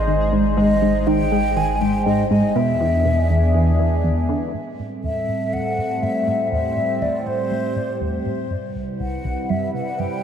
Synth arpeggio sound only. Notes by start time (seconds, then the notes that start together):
0.08 D#3
0.32 G#2
0.57 G#2
0.82 G#2
1.07 D#3
1.32 G#3
1.57 D#3
1.81 G#2
2.06 G#2
2.31 G#2
2.56 B2
2.81 E3
3.05 B2
3.30 E2
3.55 E2
3.80 E3
4.04 E2
4.29 D3
4.54 A2
4.79 A2
5.04 E2
5.29 A2
5.53 E2
5.78 A2
6.03 A2
6.27 A2
6.52 E2
6.77 A2
7.02 E2
7.26 A2
7.51 A2
7.76 A2
8.01 E2
8.26 A2
8.51 G2
8.75 C2
9.00 C2
9.25 C2
9.50 G2
9.74 C3
9.99 G2